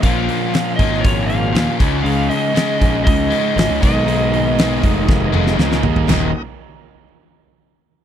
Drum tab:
CC |----------------|----------------|----------------|x---------------|
HH |o-o-o-o-o-o-o-o-|o-o-o-o-o-o-o-o-|o-o-o-o---------|----------------|
SD |----o--o----o---|----o-------o---|----o---o--ooo--|o---------------|
T1 |----------------|----------------|---------o------|----------------|
T2 |----------------|----------------|----------o-----|----------------|
FT |----------------|----------------|--------------oo|o---------------|
BD |o-----o-o-----o-|------o-o-----o-|------o-o-------|----------------|